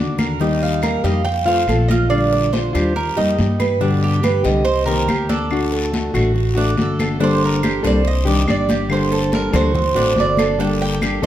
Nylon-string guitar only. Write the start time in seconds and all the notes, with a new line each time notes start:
Already playing: D3 A3
0.00 D4 F#4
0.40 D#3 G3 A#3 D#4 G4
0.83 G3 A#3 D#4 G4
1.04 G3 A#3 D#4 G4
1.25 muted nylon-string guitar stroke
1.46 F3 A3 C4 F4
1.67 F3 A3 C4 F4
2.09 D3 G3 D4 F4
2.52 D3 G3 D4 F4
2.73 G3 D4 F4
2.96 muted nylon-string guitar stroke
3.17 G3 A#3 D#4 G4
3.39 G3 A#3 D#4 G4
3.80 B2 D3 G3 B3 G4
4.23 D3 G3 B3 G4
4.44 D3 G3 B3 G4
4.86 D#3 A#3 C4 G4
5.08 A#3 C4 G4
5.50 D3 A3 D4 F#4
5.92 D3 A3 D4 F#4
6.14 A3 D4 F#4
6.34 muted nylon-string guitar stroke
6.55 A3 D4 F#4
6.76 D3 A3 D4 F#4
7.19 D3 G3 A#3 D4 A4
7.62 G3 A#3 D4 A4
7.83 G3 A#3 D4 A4
8.04 muted nylon-string guitar stroke
8.25 D#3 G3 D4 G4
8.46 D#3 G3 D4 G4
8.89 D3 G3 A#3 D4 A4
9.32 G3 A#3 D4 A4
9.53 G3 A#3 D4 A4
9.74 muted nylon-string guitar stroke
9.95 A3 C4 F#4
10.15 D3 A3 C4 F#4
10.58 D3 G3 A#3 D4 A4
11.01 G3 A#3 D4 A4
11.22 D4 A4